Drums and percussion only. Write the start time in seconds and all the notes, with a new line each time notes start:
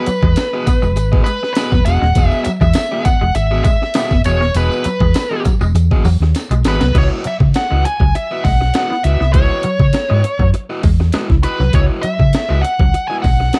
0.06 closed hi-hat, tambourine
0.23 kick
0.36 snare, closed hi-hat, tambourine
0.67 kick, closed hi-hat, tambourine
0.83 tambourine
0.96 closed hi-hat, tambourine
1.13 kick
1.26 closed hi-hat, tambourine
1.43 snare
1.55 snare, closed hi-hat, tambourine
1.72 kick, snare, tambourine
1.85 closed hi-hat, tambourine
2.02 snare
2.15 kick, closed hi-hat, tambourine
2.31 tambourine
2.45 closed hi-hat, tambourine
2.61 kick, tambourine
2.74 snare, closed hi-hat, tambourine
3.05 kick, closed hi-hat, tambourine
3.35 closed hi-hat, tambourine
3.65 kick, closed hi-hat, tambourine
3.82 snare
3.94 snare, closed hi-hat, tambourine
4.11 kick, snare, tambourine
4.24 closed hi-hat, tambourine
4.41 snare
4.55 closed hi-hat, tambourine
4.71 tambourine
4.84 closed hi-hat, tambourine
5.00 kick
5.14 snare, closed hi-hat, tambourine
5.45 kick, closed hi-hat, tambourine
5.61 tambourine
5.75 closed hi-hat, tambourine
5.91 kick
6.04 open hi-hat, tambourine
6.22 snare
6.35 snare, closed hi-hat, tambourine
6.51 closed hi-hat, tambourine
6.65 snare, closed hi-hat, tambourine
6.81 snare, closed hi-hat
6.95 kick, closed hi-hat, crash
7.24 closed hi-hat
7.40 kick
7.54 snare, closed hi-hat
7.85 closed hi-hat
8.00 kick
8.15 closed hi-hat
8.45 kick, open hi-hat
8.62 snare
8.74 snare, closed hi-hat
8.91 snare
9.04 closed hi-hat
9.21 snare
9.34 kick, closed hi-hat
9.63 closed hi-hat
9.80 kick
9.93 snare, closed hi-hat
10.24 closed hi-hat
10.39 kick
10.54 closed hi-hat
10.83 kick, open hi-hat
11.00 snare
11.13 snare, closed hi-hat
11.30 kick, snare
11.43 closed hi-hat
11.60 snare
11.73 kick, closed hi-hat
12.03 closed hi-hat
12.19 kick
12.33 snare, closed hi-hat
12.65 closed hi-hat
12.79 kick
12.94 closed hi-hat
13.24 kick, open hi-hat
13.41 snare
13.53 snare, closed hi-hat